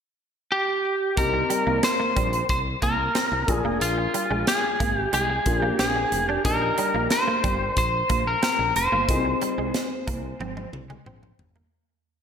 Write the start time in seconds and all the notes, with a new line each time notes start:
0.52 G4
1.16 C2 A#3 C4 D#4 G4 A#4, kick, closed hi-hat
1.34 muted clean electric guitar stroke
1.50 G3, closed hi-hat
1.67 C2 A#3
1.83 C5, muted clean electric guitar stroke, snare, closed hi-hat
2.00 A#3
2.16 A#1 G3, kick, closed hi-hat
2.33 closed hi-hat
2.49 C2 C5, kick, closed hi-hat
2.82 C2 A#3 A#4, kick, closed hi-hat
3.15 C4, snare, closed hi-hat
3.32 C2, muted clean electric guitar stroke
3.47 A#1 A#3 D4 F4 G#4, kick, closed hi-hat
3.54 G#4
3.65 F1 A#3
3.81 A#1 F4, closed hi-hat
3.98 muted clean electric guitar stroke
4.14 G3, closed hi-hat
4.30 A#1 G#3
4.47 G#4, snare, closed hi-hat
4.80 G#1 A#3, kick, closed hi-hat
4.96 G4
5.13 C2 G#3 G#4, closed hi-hat
5.30 muted clean electric guitar stroke
5.46 A#1 A#3 D4 F4 G#4, kick, closed hi-hat
5.62 A#3 G4
5.79 A#1 C4 G#4, snare, closed hi-hat
5.96 muted clean electric guitar stroke
6.12 F1, closed hi-hat
6.28 D4 G4
6.44 A#1 A#3 D4 D#4 G4 A#4, kick, closed hi-hat
6.62 muted clean electric guitar stroke
6.78 G3, closed hi-hat
6.94 A#1 A#3
7.10 C5, muted clean electric guitar stroke, snare, closed hi-hat
7.27 A#3
7.44 G1 G3, kick, closed hi-hat
7.77 A#1 C5, kick, closed hi-hat
8.10 A#1 A#3, kick, closed hi-hat
8.27 A#4
8.43 C4 A#4, snare, closed hi-hat
8.59 A#1, muted clean electric guitar stroke
8.76 F1 C5, closed hi-hat
8.92 G1 A#3
9.08 C2 A#3 D#4 F4 G#4, kick, closed hi-hat
9.14 C4
9.25 muted clean electric guitar stroke
9.41 G3, closed hi-hat
9.58 C2 G#3
9.74 snare, closed hi-hat
10.07 C2 A#3, kick, closed hi-hat
10.40 G#1 C4, high tom
10.57 muted clean electric guitar stroke, high tom
10.73 C2, mid tom
10.90 G#3, mid tom
11.06 A#1 C4, mid tom
11.23 muted clean electric guitar stroke, mid tom
11.39 G1, floor tom
11.56 A#3, floor tom